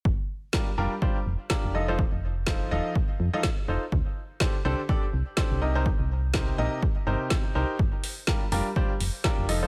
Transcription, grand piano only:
X:1
M:4/4
L:1/16
Q:"Swing 16ths" 1/4=124
K:Gm
V:1 name="Grand piano"
z4 [G,DFGB] z [G,DFGB] z [G,DFGc] z3 [DFGB]2 [F,EFAe] [F,EFAc] | z4 [F,EFAc]2 [F,EFAe]2 z3 [F,EFAe] z2 [EFAc] z | z4 [D,DGAc] z [D,DGAc] z [D,DGAd] z3 [DGAc]2 [C,EGBe] [C,EGBc] | z4 [C,EGBc]2 [C,EGBe]2 z2 [C,EGBc]4 [EGBc]2 |
z4 [G,DFGB] z [G,DFGB] z [G,DFGc] z3 [DFGB]2 [F,EFAe] [F,EFAc] |]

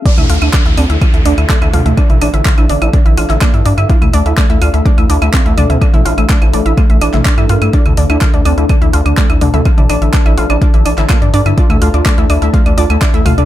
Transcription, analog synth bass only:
X:1
M:4/4
L:1/16
Q:1/4=125
K:Dm
V:1 name="Analog synth bass" clef=bass
z D,, D,, D,, z D,, D,, D,, z D,, D,, D,, z D,, D,, D,, | z A,,, A,,, A,,, z A,,, A,,, A,,, z A,,, A,,, A,,, z G,, G,, G,, | z D,, D,, D,, z D,, D,, D,, z D,, D,, D,, z D,, D,, D,, | z A,,, A,,, A,,, z A,,, A,,, A,,, z A,,, A,,, A,,, z G,, G,, G,, |
z D,, D,, D,, z D,, D,, D,, z D,, D,, D,, z D,, D,, D,, | z A,,, A,,, A,,, z A,,, A,,, A,,, z A,,, A,,, A,,, z G,, G,, G,, | z D,, D,, D,, z D,, D,, D,, z D,, D,, D,, z D,, D,, D,, |]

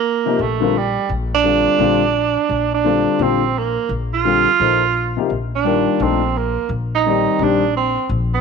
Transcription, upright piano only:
X:1
M:4/4
L:1/8
Q:"Swing" 1/4=171
K:Eblyd
V:1 name="Upright piano"
z [C,F,B,EG] z [D,G,CFB] z4 | [D,G,CFA]2 [D,G,CFA] z4 z | [D,G,CFA]2 [D,G,CFc] z4 z | [D,G,CFA] z [F,B,EAc] z2 [C,F,B,EG] z2 |
[E,G,B,FB]2 [F,A,DEA] z4 z | [E,G,CGd]2 [E,G,CDG] z4 z |]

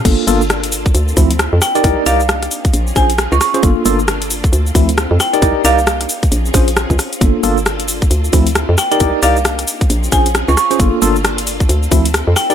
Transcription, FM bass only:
X:1
M:4/4
L:1/16
Q:"Swing 16ths" 1/4=134
K:Gm
V:1 name="FM bass" clef=bass
G,,, z G,,,6 D,,2 D,,3 F,, z2 | C,, z C,,4 z2 B,,,2 B,,,3 _D,, z2 | G,,, z G,,,6 D,,2 D,,3 F,, z2 | C,, z C,,4 z2 B,,,2 B,,,3 _D,, z2 |
G,,, z G,,,6 D,,2 D,,3 F,, z2 | C,, z C,,4 z2 B,,,2 B,,,3 _D,, z2 | G,,, z G,,,6 D,,2 D,,3 F,, z2 |]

